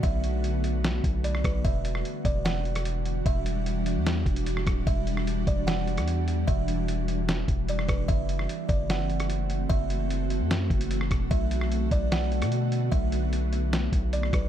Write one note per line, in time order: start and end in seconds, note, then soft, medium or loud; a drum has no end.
0.00 1.00 B1 loud
0.00 1.61 D3 medium
0.00 1.61 A3 medium
0.00 1.61 B3 medium
0.00 1.61 F#4 medium
0.00 0.80 E5 loud
0.00 kick loud
0.00 closed hi-hat medium
0.24 closed hi-hat medium
0.44 closed hi-hat medium
0.64 closed hi-hat medium
0.84 snare loud
0.84 closed hi-hat medium
1.04 1.43 B1 loud
1.04 kick medium
1.04 closed hi-hat medium
1.24 1.43 D5 medium
1.24 closed hi-hat medium
1.35 cross-stick loud
1.44 1.64 B1 loud
1.44 1.64 B4 medium
1.44 kick medium
1.44 cross-stick loud
1.44 closed hi-hat medium
1.65 2.03 E1 loud
1.65 11.27 E3 medium
1.65 8.05 G3 medium
1.65 8.05 D4 medium
1.65 8.05 F#4 loud
1.65 2.21 E5 loud
1.65 kick loud
1.65 closed hi-hat medium
1.85 closed hi-hat medium
1.95 cross-stick loud
2.05 closed hi-hat medium
2.25 3.22 E1 loud
2.25 2.44 D5 medium
2.25 kick loud
2.25 closed hi-hat medium
2.45 3.22 F#5 medium
2.45 snare loud
2.45 closed hi-hat medium
2.65 closed hi-hat soft
2.75 cross-stick loud
2.75 closed hi-hat medium
2.85 closed hi-hat medium
3.06 closed hi-hat medium
3.26 3.98 E1 loud
3.26 4.03 E5 loud
3.26 kick loud
3.26 closed hi-hat medium
3.46 closed hi-hat medium
3.66 closed hi-hat medium
3.86 closed hi-hat medium
3.96 4.25 E2 loud
4.06 snare loud
4.06 closed hi-hat medium
4.26 4.65 E1 loud
4.26 kick medium
4.26 closed hi-hat soft
4.36 closed hi-hat medium
4.46 closed hi-hat medium
4.57 cross-stick loud
4.67 4.86 D1 loud
4.67 kick loud
4.67 cross-stick loud
4.67 closed hi-hat medium
4.87 5.45 E1 loud
4.87 5.44 E5 loud
4.87 kick loud
4.87 closed hi-hat medium
5.07 closed hi-hat medium
5.17 cross-stick loud
5.27 closed hi-hat medium
5.47 5.99 E1 loud
5.47 5.66 D5 medium
5.47 kick loud
5.47 closed hi-hat medium
5.67 6.44 F#5 medium
5.67 snare loud
5.67 closed hi-hat medium
5.87 closed hi-hat soft
5.97 6.45 E2 loud
5.97 cross-stick medium
5.97 closed hi-hat medium
6.08 closed hi-hat medium
6.28 closed hi-hat medium
6.47 7.44 E1 loud
6.47 7.24 E5 loud
6.47 kick loud
6.47 closed hi-hat medium
6.68 closed hi-hat medium
6.88 closed hi-hat medium
7.08 closed hi-hat medium
7.29 snare loud
7.29 closed hi-hat medium
7.48 7.87 E1 loud
7.48 kick medium
7.48 closed hi-hat medium
7.68 7.88 D5 medium
7.68 closed hi-hat medium
7.79 cross-stick loud
7.88 8.08 E1 loud
7.88 8.08 B4 medium
7.88 kick medium
7.88 cross-stick loud
7.88 closed hi-hat medium
8.08 8.48 F#1 loud
8.08 14.49 A3 medium
8.08 11.28 C4 medium
8.08 14.49 F#4 medium
8.08 8.65 E5 loud
8.08 kick loud
8.08 closed hi-hat medium
8.29 closed hi-hat medium
8.39 cross-stick medium
8.49 closed hi-hat medium
8.69 9.66 F#1 loud
8.69 8.88 D5 medium
8.69 kick loud
8.69 closed hi-hat medium
8.90 9.66 F#5 medium
8.90 snare loud
8.90 closed hi-hat medium
9.10 closed hi-hat soft
9.20 cross-stick medium
9.20 closed hi-hat medium
9.30 closed hi-hat medium
9.50 closed hi-hat medium
9.70 10.42 F#1 loud
9.70 10.46 E5 loud
9.70 kick loud
9.70 closed hi-hat medium
9.90 closed hi-hat medium
10.10 closed hi-hat medium
10.30 closed hi-hat medium
10.40 10.69 F#2 loud
10.51 snare loud
10.51 closed hi-hat medium
10.70 11.09 F#1 loud
10.70 kick medium
10.70 closed hi-hat soft
10.81 closed hi-hat medium
10.91 closed hi-hat medium
11.01 cross-stick loud
11.11 11.30 E1 loud
11.11 kick loud
11.11 cross-stick loud
11.11 closed hi-hat medium
11.31 11.89 B1 loud
11.31 14.49 D3 medium
11.31 14.49 B3 medium
11.31 11.88 E5 loud
11.31 kick loud
11.31 closed hi-hat medium
11.51 closed hi-hat medium
11.61 cross-stick loud
11.72 closed hi-hat medium
11.91 12.43 B1 loud
11.91 12.11 D5 medium
11.91 kick medium
11.91 closed hi-hat medium
12.12 12.88 F#5 medium
12.12 snare loud
12.12 closed hi-hat medium
12.32 closed hi-hat soft
12.42 12.90 B2 loud
12.42 cross-stick loud
12.42 closed hi-hat medium
12.52 closed hi-hat medium
12.72 closed hi-hat medium
12.92 13.89 B1 loud
12.92 13.68 E5 loud
12.92 kick loud
12.92 closed hi-hat medium
13.12 closed hi-hat medium
13.33 closed hi-hat medium
13.53 closed hi-hat medium
13.73 snare loud
13.73 closed hi-hat medium
13.92 14.31 B1 loud
13.92 kick medium
13.92 closed hi-hat medium
14.13 14.32 D5 medium
14.13 closed hi-hat medium
14.23 cross-stick loud
14.33 14.49 B1 loud
14.33 14.49 B4 medium
14.33 kick medium
14.33 cross-stick loud
14.33 closed hi-hat medium